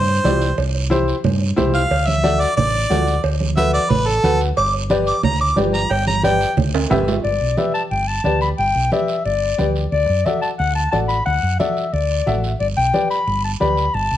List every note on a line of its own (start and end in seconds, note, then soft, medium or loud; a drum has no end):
0.00 0.18 G2 loud
0.00 0.56 C5 loud
0.24 0.51 C2 medium
0.24 0.48 E4 medium
0.24 0.48 G4 medium
0.24 0.48 D5 medium
0.24 cowbell medium
0.24 high conga medium
0.24 low timbale medium
0.24 short guiro medium
0.41 short guiro medium
0.58 1.11 C2 loud
0.58 cowbell loud
0.58 long guiro medium
0.90 1.14 E4 medium
0.90 1.14 G4 medium
0.90 1.14 C5 medium
0.90 cowbell medium
0.90 high conga medium
0.90 short guiro medium
1.08 short guiro medium
1.24 1.51 G2 loud
1.24 cowbell medium
1.24 low conga medium
1.24 long guiro medium
1.56 1.84 C2 loud
1.56 1.80 E4 medium
1.56 1.81 G4 medium
1.56 1.81 C5 medium
1.56 cowbell medium
1.56 high conga medium
1.56 low conga medium
1.56 low timbale medium
1.56 short guiro medium
1.74 2.08 F5 loud
1.74 short guiro medium
1.91 2.44 D2 medium
1.91 cowbell loud
1.91 long guiro medium
2.07 2.42 E5 medium
2.07 high conga medium
2.23 2.47 F#4 medium
2.23 2.47 A4 medium
2.23 2.47 D5 medium
2.23 cowbell medium
2.23 high conga medium
2.23 short guiro medium
2.41 2.56 D5 medium
2.41 short guiro medium
2.57 2.84 A1 loud
2.57 3.22 D5 medium
2.57 cowbell medium
2.57 low conga medium
2.57 long guiro medium
2.90 3.17 D2 loud
2.90 3.13 F#4 medium
2.90 3.14 A4 medium
2.90 3.14 D5 medium
2.90 cowbell medium
2.90 high conga medium
2.90 low timbale medium
2.90 short guiro medium
3.07 short guiro medium
3.24 3.77 D2 medium
3.24 cowbell loud
3.24 long guiro medium
3.40 high conga medium
3.56 3.80 F#4 medium
3.56 3.80 A4 medium
3.56 3.81 B4 medium
3.56 3.73 E5 loud
3.56 cowbell medium
3.56 high conga medium
3.56 short guiro medium
3.74 3.91 D5 loud
3.74 short guiro medium
3.90 4.17 A1 loud
3.90 4.08 B4 medium
3.90 cowbell medium
3.90 low conga medium
3.90 long guiro medium
4.07 4.39 A4 loud
4.23 4.50 D2 loud
4.23 4.47 F#4 medium
4.23 4.47 A4 medium
4.23 4.47 B4 medium
4.23 cowbell medium
4.23 high conga medium
4.23 short guiro medium
4.41 short guiro medium
4.57 5.11 G1 loud
4.57 4.73 D6 loud
4.57 cowbell loud
4.57 long guiro medium
4.90 5.14 G4 medium
4.90 5.14 B4 medium
4.90 5.14 D5 loud
4.90 cowbell medium
4.90 high conga medium
4.90 short guiro medium
5.07 5.23 D6 medium
5.07 short guiro medium
5.23 5.50 D2 loud
5.23 5.40 A#5 medium
5.23 cowbell medium
5.23 low conga medium
5.23 long guiro medium
5.41 5.57 D6 loud
5.56 5.84 G1 medium
5.56 5.80 G4 medium
5.56 5.80 B4 medium
5.56 5.80 D5 medium
5.56 cowbell medium
5.56 high conga medium
5.56 low timbale medium
5.56 short guiro medium
5.74 5.93 A#5 medium
5.74 short guiro medium
5.90 6.44 G1 loud
5.90 6.07 G5 medium
5.90 cowbell loud
5.90 long guiro medium
6.07 6.23 A#5 medium
6.07 high conga medium
6.23 6.47 G4 medium
6.23 6.47 B4 medium
6.23 6.47 D5 medium
6.23 6.56 G5 loud
6.23 cowbell medium
6.23 high conga medium
6.23 short guiro medium
6.41 short guiro medium
6.57 6.84 D2 loud
6.57 cowbell medium
6.57 low conga medium
6.57 long guiro medium
6.74 high timbale loud
6.90 7.17 G1 medium
6.90 7.14 G4 medium
6.90 7.14 B4 medium
6.90 7.14 E5 loud
6.90 cowbell medium
6.90 high conga medium
6.90 low conga medium
6.90 high timbale medium
6.90 short guiro medium
7.08 low timbale medium
7.08 short guiro medium
7.24 7.38 G1 medium
7.24 7.59 D5 medium
7.24 high conga soft
7.24 long guiro medium
7.41 7.54 B1 medium
7.57 7.81 G4 medium
7.57 7.81 B4 medium
7.57 7.81 D5 medium
7.57 7.74 E5 medium
7.57 high conga medium
7.57 short guiro medium
7.74 7.82 A5 medium
7.74 short guiro medium
7.91 8.18 G1 medium
7.91 8.09 G5 medium
7.91 high conga soft
7.91 long guiro medium
8.08 8.24 A5 medium
8.24 8.52 D2 medium
8.24 8.48 G4 medium
8.24 8.48 B4 medium
8.24 8.48 D5 medium
8.24 8.40 A5 medium
8.24 high conga medium
8.24 short guiro medium
8.41 8.49 B5 medium
8.41 short guiro medium
8.58 8.72 G1 medium
8.58 8.90 G5 loud
8.58 high conga soft
8.58 long guiro medium
8.75 8.89 B1 medium
8.92 9.15 G4 medium
8.92 9.15 B4 medium
8.92 9.15 D5 medium
8.92 9.23 E5 medium
8.92 high conga medium
8.92 short guiro medium
9.08 short guiro medium
9.25 9.52 G1 medium
9.25 9.72 D5 medium
9.25 high conga soft
9.25 long guiro medium
9.58 9.85 D2 medium
9.58 9.82 G4 medium
9.58 9.82 B4 medium
9.58 9.82 D5 medium
9.58 high conga medium
9.58 short guiro medium
9.76 short guiro medium
9.92 10.06 D2 medium
9.92 10.27 D5 loud
9.92 high conga soft
9.92 long guiro medium
10.09 10.23 F#2 medium
10.25 10.49 F#4 medium
10.25 10.49 A4 medium
10.25 10.49 D5 medium
10.25 10.41 E5 medium
10.25 high conga medium
10.25 short guiro medium
10.42 10.50 A5 medium
10.42 short guiro medium
10.59 10.86 D2 medium
10.59 10.75 F#5 medium
10.59 high conga soft
10.59 long guiro medium
10.76 10.91 A5 medium
10.92 11.20 A1 medium
10.92 11.16 F#4 medium
10.92 11.16 A4 medium
10.92 11.16 D5 medium
10.92 11.00 A5 medium
10.92 high conga medium
10.92 short guiro medium
11.09 11.25 B5 medium
11.09 short guiro medium
11.25 11.40 D2 medium
11.25 11.57 F#5 medium
11.25 high conga soft
11.25 long guiro medium
11.43 11.56 F#2 medium
11.59 11.83 F#4 medium
11.59 11.83 A4 medium
11.59 11.83 D5 medium
11.59 11.95 E5 medium
11.59 high conga medium
11.59 short guiro medium
11.77 short guiro medium
11.93 12.20 D2 medium
11.93 12.43 D5 medium
11.93 high conga soft
11.93 long guiro medium
12.26 12.53 A1 medium
12.26 12.50 F#4 medium
12.26 12.50 A4 medium
12.26 12.50 E5 medium
12.26 high conga medium
12.26 short guiro medium
12.44 short guiro medium
12.60 12.74 G1 medium
12.60 12.68 D5 medium
12.60 high conga soft
12.60 long guiro medium
12.77 12.90 B1 medium
12.77 13.08 G5 medium
12.93 13.17 G4 medium
12.93 13.17 B4 medium
12.93 13.17 D5 medium
12.93 high conga medium
12.93 short guiro medium
13.10 13.42 B5 medium
13.10 short guiro medium
13.27 13.54 G1 medium
13.27 high conga soft
13.27 long guiro medium
13.45 13.52 A5 medium
13.60 13.87 D2 medium
13.60 13.84 G4 medium
13.60 13.84 B4 medium
13.60 13.84 D5 medium
13.60 13.96 B5 medium
13.60 high conga medium
13.60 short guiro medium
13.77 short guiro medium
13.94 14.08 G1 medium
13.94 14.17 A5 medium
13.94 high conga soft
13.94 long guiro medium
14.11 14.17 B1 medium